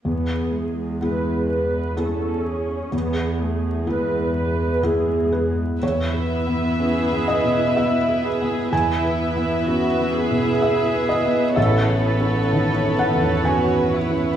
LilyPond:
<<
  \new Staff \with { instrumentName = "Violin section" } { \time 3/4 \key e \major \tempo 4 = 63 r2. | r2. | <b' e''>2. | <b' e''>2. |
<b' cis''>2. | }
  \new Staff \with { instrumentName = "Cello section" } { \time 3/4 \key e \major e,2. | e,2. | r4 gis'4 e'8 gis'8 | e'4 fis'8 gis'4. |
a'8 a'4. fis'8 e'8 | }
  \new Staff \with { instrumentName = "Viola section" } { \time 3/4 \key e \major << { gis'4 b'8 b'8 a'8 gis'8 | gis'4 b'8 b'8 gis'4 | b2. | b2. |
b2. | } \\ { b8 gis4. cis'4 | b8 a8 gis4 gis4 | e'2. | e'2. |
e'2. | } >> }
  \new Staff \with { instrumentName = "Felt piano" } { \time 3/4 \key e \major r2. | r2 r8 b'8 | cis''4. dis''8 e''4 | gis''2 e''8 dis''8 |
e''4. fis''8 gis''4 | }
  \new Staff \with { instrumentName = "Felt piano" } { \time 3/4 \key e \major e,4 <b e' gis'>4 <b e' gis'>4 | e,4 <b e' gis'>4 <b e' gis'>4 | \tuplet 3/2 { e,8 b'8 b8 cis'8 b8 b,8 b8 b'8 b8 } | \tuplet 3/2 { e,8 b'8 b8 cis'8 b8 b,8 b8 b'8 b8 } |
\tuplet 3/2 { a,,8 b'8 cis'8 dis8 cis'8 e,8 cis'8 b'8 cis'8 } | }
>>